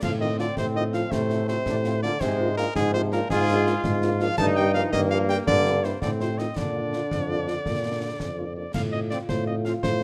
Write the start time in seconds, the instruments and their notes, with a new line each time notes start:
0.02 tuba A2, euphonium F3, trombone section C4, cornet F5, concert bass drum, snare, crash
0.20 euphonium D#3, french horn section C4 F4, cornet D#5
0.39 euphonium D3, french horn section C4 F4, cornet D5, snare
0.57 tuba A2, euphonium C3, cornet C5, concert bass drum, snare
0.75 euphonium D#3, french horn section C4 F4, cornet D#5
0.93 euphonium F3, french horn section C4 F4, cornet F5, snare
1.11 tuba A2, euphonium C3, trombone section A3, cornet C5, concert bass drum, snare
1.30 french horn section C4 F4, snare
1.47 euphonium C3, french horn section C4 F4, cornet C5, snare
1.66 tuba A2, trombone section D4, concert bass drum, snare
1.84 trombone section C4, french horn section C4 F4, snare
2.02 euphonium D3, trombone section A#3, french horn section C4 F4, cornet D5, snare
2.20 tuba G#2, euphonium C3, trombone section G#3, cornet C5, concert bass drum, snare, crash
2.40 french horn section A#3 D4 F4
2.57 euphonium A#2, french horn section A#3 D4 F4, cornet A#4, snare
2.75 euphonium G#2, tuba G#2, trombone section F3, cornet G#4, concert bass drum, snare
2.93 euphonium C3, french horn section A#3 D4 F4, cornet C5
3.12 euphonium A#2, french horn section A#3 D4 F4, cornet A#4, snare
3.29 euphonium G#2, tuba G#2, trombone section F4, cornet G#4, concert bass drum, snare
3.48 french horn section A#3 D4 F4, snare
3.66 french horn section A#3 D4 F4, snare
3.84 tuba G#2, concert bass drum, snare
4.02 french horn section A#3 D4 F4, snare
4.19 euphonium F3, french horn section A#3 D4 F4, cornet F5, snare
4.38 tuba G2, euphonium A3, trombone section D#4, cornet A5, concert bass drum, snare, crash
4.55 euphonium G3, french horn section A#3 D#4 G4, cornet G5
4.74 euphonium F3, french horn section A#3 D#4 G4, cornet F5, snare
4.91 tuba G2, euphonium D#3, trombone section A#3, cornet D#5, concert bass drum, snare
5.10 euphonium F3, french horn section A#3 D#4 G4, cornet F5
5.28 euphonium G3, french horn section A#3 D#4 G4, cornet G5, snare
5.46 tuba G2, euphonium D3, cornet D5, concert bass drum, snare
5.65 french horn section A#3 C4 E4, snare
5.84 euphonium C3, french horn section A#3 C4 E4, cornet C5, snare
6.01 tuba A2, euphonium D3, trombone section C4, cornet D5, concert bass drum, snare
6.20 euphonium C3, french horn section C4 D#4 F4, cornet C5, snare
6.38 euphonium D#3, french horn section C4 D#4 F4, cornet D#5, snare
6.56 tuba A#2, euphonium D3, trombone section D4, cornet D5, concert bass drum, snare, crash
6.75 french horn section A#3 D4 F4
6.92 french horn section A#3 D4 F4, snare
7.11 tuba F2, concert bass drum, snare
7.29 french horn section A#3 D4 F4
7.47 french horn section A#3 D4 F4, snare
7.65 tuba A#2, concert bass drum, snare
7.84 french horn section A#3 D4 F4
8.01 french horn section A#3 D4 F4
8.20 tuba F2, concert bass drum, snare
8.38 french horn section A#3 D4 F4
8.56 french horn section A#3 D4 F4, cornet D5
8.74 tuba A2, euphonium F4, cornet F5, concert bass drum, snare, crash
8.92 french horn section C4 F4, cornet D#5
9.10 trombone section F3 C4, french horn section C4 F4, cornet D5, snare
9.29 tuba A2, cornet C5, concert bass drum, snare
9.47 french horn section C4 F4, cornet D#5
9.64 trombone section F3 C4, french horn section C4 F4, cornet F5, snare
9.83 tuba A2, cornet C5, concert bass drum, snare